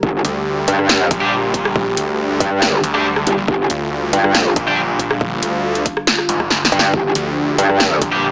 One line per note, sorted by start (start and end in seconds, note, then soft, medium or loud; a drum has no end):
0.00 0.23 G1 loud
0.00 8.32 D3 medium
0.00 6.90 G3 medium
0.00 3.47 G4 medium
0.00 kick loud
0.25 0.66 D2 medium
0.25 closed hi-hat medium
0.68 1.09 G2 medium
0.68 closed hi-hat medium
0.79 cross-stick medium
0.89 snare loud
1.11 1.96 A#1 loud
1.11 kick loud
1.11 closed hi-hat medium
1.22 1.32 G3 medium
1.22 1.32 D4 medium
1.22 1.32 G4 medium
1.54 kick medium
1.54 closed hi-hat medium
1.65 cross-stick medium
1.76 kick loud
1.97 2.39 D2 loud
1.97 closed hi-hat medium
2.40 2.82 G2 loud
2.40 kick loud
2.40 closed hi-hat medium
2.62 snare loud
2.84 3.25 D2 loud
2.84 closed hi-hat medium
2.94 3.05 G3 medium
2.94 3.05 D4 medium
2.94 3.05 G4 loud
2.94 cross-stick medium
3.16 cross-stick medium
3.27 3.36 G1 loud
3.27 closed hi-hat medium
3.38 3.47 A#1 loud
3.48 3.68 G1 loud
3.48 6.92 F4 medium
3.48 kick loud
3.70 4.11 D2 loud
3.70 closed hi-hat medium
4.13 4.54 G2 loud
4.13 closed hi-hat medium
4.24 cross-stick medium
4.35 snare loud
4.56 5.41 A#1 loud
4.56 kick loud
4.56 closed hi-hat medium
4.67 4.78 G3 medium
4.67 4.78 D4 medium
4.67 4.78 G4 loud
4.99 kick medium
4.99 closed hi-hat medium
5.11 cross-stick medium
5.21 kick loud
5.43 5.84 D2 loud
5.43 closed hi-hat medium
5.75 closed hi-hat soft
5.86 kick loud
5.86 closed hi-hat medium
5.97 cross-stick medium
6.07 snare loud
6.18 cross-stick medium
6.29 6.70 G#1 medium
6.29 closed hi-hat medium
6.40 kick medium
6.40 cross-stick medium
6.50 snare medium
6.65 snare medium
6.72 6.92 G2 medium
6.72 closed hi-hat medium
6.79 snare medium
6.94 7.13 G1 loud
6.94 8.32 F3 medium
6.94 8.32 G4 medium
6.94 kick loud
7.15 7.57 D2 loud
7.15 closed hi-hat medium
7.58 8.00 G2 loud
7.58 closed hi-hat medium
7.70 cross-stick medium
7.80 snare loud
8.02 8.32 A#1 loud
8.02 kick loud
8.02 closed hi-hat medium
8.12 8.23 G3 medium
8.12 8.23 D4 medium
8.12 8.23 G4 loud